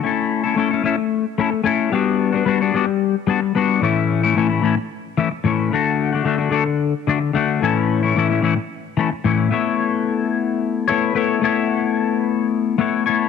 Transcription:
X:1
M:7/8
L:1/16
Q:1/4=111
K:Amix
V:1 name="Clean electric guitar"
[A,CEA]3 [CEA] [A,CEA] [CEA] [A,CEA]3 z [A,CEA]2 [A,CEA]2 | [G,B,DF]3 [B,DF] [G,B,DF] [B,DF] [G,B,DF]3 z [G,B,DF]2 [G,B,DF]2 | [A,,E,A,CE]3 [A,CE] [A,,E,A,CE] [A,CE] [E,A,CE]3 z [E,A,CE]2 [A,,E,A,CE]2 | [D,A,DF]3 [A,DF] [D,A,DF] [A,DF] [D,A,DF]3 z [D,A,DF]2 [D,A,DF]2 |
[A,,E,A,CE]3 [A,CE] [A,,E,A,CE] [A,CE] [E,A,CE]3 z [E,A,CE]2 [A,,E,A,CE]2 | [A,B,EAc]8- [A,B,EAc]2 [A,B,EAc]2 [A,B,EAc]2 | [A,B,EAc]8- [A,B,EAc]2 [A,B,EAc]2 [A,B,EAc]2 |]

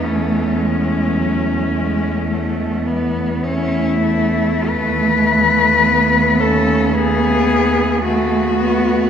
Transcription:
X:1
M:4/4
L:1/8
Q:1/4=53
K:Alyd
V:1 name="Cello"
C4- C z E2 | B3 A G2 F2 |]
V:2 name="Cello"
A,6 A,2 | A,6 A,2 |]
V:3 name="Cello"
A, G, F, G, A, B, C A,- | A,2 B, C B,2 A, B, |]
V:4 name="Cello" clef=bass
E,,8 | D,,8 |]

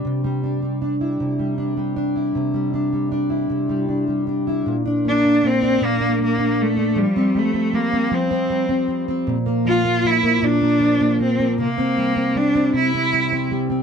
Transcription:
X:1
M:6/8
L:1/16
Q:3/8=52
K:Cmix
V:1 name="Cello"
z12 | z12 | z2 D2 C2 B,2 B,2 A,2 | G,2 A,2 B,2 C4 z2 |
z2 F2 E2 D4 C2 | B,4 D2 E4 z2 |]
V:2 name="Steel-string acoustic guitar"
C, G, D G, D E C, G, D G, D E | C, G, D G, D E C, G, D G, D E | B,, D B, D B, D B,, D B, D2 D | F, C G, C G, C F, C G, C G, C |
B,, B, F, B, F, B, B,, B, F, B, F, B, | C, C G, C G, C C, C G, C G, C |]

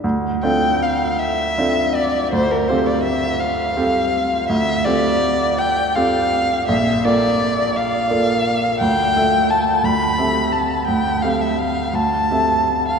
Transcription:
X:1
M:6/8
L:1/16
Q:3/8=55
K:Dm
V:1 name="Violin"
z2 g2 f2 e4 d2 | c B c d e2 f6 | e2 d4 g2 f4 | e2 d4 f6 |
g4 a2 =b4 a2 | g2 f e f2 a4- a f |]
V:2 name="Grand piano"
D,,2 [CDFA]6 [CDFA]4 | D,,2 [CFGA]6 [CFGA]4 | D,,2 [CFGA]6 [CFGA]4 | B,,,2 [B,FAd]6 [B,FAd]4 |
D,,2 [A,FAe]4 D,,2 [CGAe]4 | D,,2 [CGAf]4 D,,2 [CGAe]4 |]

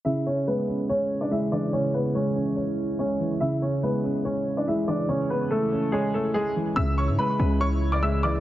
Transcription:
X:1
M:4/4
L:1/16
Q:1/4=143
K:C#phr
V:1 name="Upright piano"
[Ee]2 [Cc]2 [B,B]4 [Cc]3 [Dd] [Ee]2 [Dd]2 | [Cc]2 [B,B]2 [Cc]8 [Cc]4 | [Ee]2 [Cc]2 [B,B]4 [Cc]3 [Dd] [Ee]2 [Dd]2 | [Cc]2 [B,B]2 [A,A]4 [G,G]2 [A,A]2 [G,G]2 z2 |
[ee']2 [cc']2 [Bb]4 [cc']3 [dd'] [ee']2 [dd']2 |]
V:2 name="Grand piano" clef=bass
C,4 G,2 C2 c4 G,2 E,2 | C,4 G,2 C2 c4 G,2 E,2 | C,4 G,2 C2 c4 G,2 E,2 | C,6 C2 c4 G,2 E,2 |
C,4 G,2 C2 c4 G,2 E,2 |]
V:3 name="Ambient pad" clef=bass
[C,E,E]16- | [C,E,E]16- | [C,E,E]16- | [C,E,E]16 |
[C,E,E]16 |]
V:4 name="808-style bass" clef=bass
z16 | z16 | z16 | z16 |
C,,3 G,, z2 C,,8- C,,2 |]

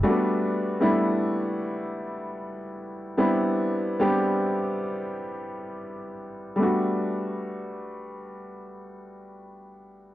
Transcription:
X:1
M:4/4
L:1/8
Q:"Swing 16ths" 1/4=71
K:G
V:1 name="Upright piano"
[G,A,_B,=B,DF]2 [G,A,B,DE]3 z3 | [G,B,CDE]2 [G,B,CDG]3 z3 | [G,A,B,DF]8 |]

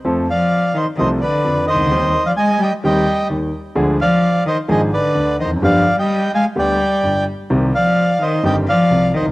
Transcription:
X:1
M:4/4
L:1/16
Q:1/4=129
K:Cm
V:1 name="Bandoneon"
z2 [df]4 [ce]2 [ce]2 [=Bd]4 [ce]2- | [ce]3 [df] [ea]2 [eg]2 [eg]4 z4 | z2 [df]4 [ce]2 [Ae]2 [=Bd]4 [ce]2 | [df]3 [eg]3 [fa]2 [dg]6 z2 |
z2 [df]4 [ce]2 [eg]2 [df]4 [ce]2 |]
V:2 name="Hollow-body jazz guitar"
c z12 z3 | z16 | z16 | z16 |
z16 |]
V:3 name="Cello" clef=bass
z2 F,4 E,2 E,2 D,4 E,2- | E,3 F, A,2 G,2 G,4 z4 | z2 F,4 E,2 E,2 D,4 E,2 | F,3 G,3 A,2 G,6 z2 |
z2 F,4 E,2 G,2 F,4 E,2 |]
V:4 name="Grand piano" clef=bass
[F,,F,=A,C=A]2 z6 [C,,C,F,A,CA]2 z2 [F,,F,]2 z/2 C,,/2 _D,,/2 =D,,/2 | [E,,E,G,CG]2 z6 [E,,E,G,CG]2 z2 [E,,E,]2 z2 | [D,,D,F,A,DA]2 z6 [A,,,A,,F,A,DA]2 z2 [D,,D,]2 z/2 =E,,/2 F,,/2 ^F,,/2 | [G,,,G,,D,G,=B,G]2 z6 [D,,D,G,B,G]2 z2 [G,,,G,,]2 z2 |
[C,,C,E,G,CG]2 z6 [G,,,G,,E,G,CG]2 z2 [C,,C,]2 z/2 =B,,,/2 C,,/2 z/2 |]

